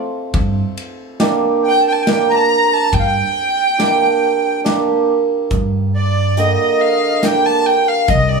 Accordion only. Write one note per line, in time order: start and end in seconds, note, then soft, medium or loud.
1.63 1.77 G5 medium
1.80 1.86 A5 medium
1.87 2.26 G5 medium
2.29 2.35 A#5 medium
2.35 2.42 A5 medium
2.42 2.89 A#5 loud
2.93 2.99 G5 medium
2.99 3.06 F5 medium
3.06 4.61 G5 medium
5.95 6.34 D5 medium
6.38 7.26 D#5 medium
7.25 7.46 G5 medium
7.47 7.66 A5 medium
7.66 7.86 G5 medium
7.88 8.10 F5 medium
8.10 8.40 D#5 medium